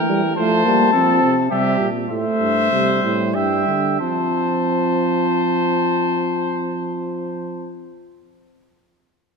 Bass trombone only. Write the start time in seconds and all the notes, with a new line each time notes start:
Already playing: E3
0.38 F3
0.66 G3
0.94 F3
1.23 C3
1.52 C3
1.81 A#2
2.10 A2
2.41 G2
2.72 C3
3.04 A2
3.35 G2
3.67 D3
4.01 F3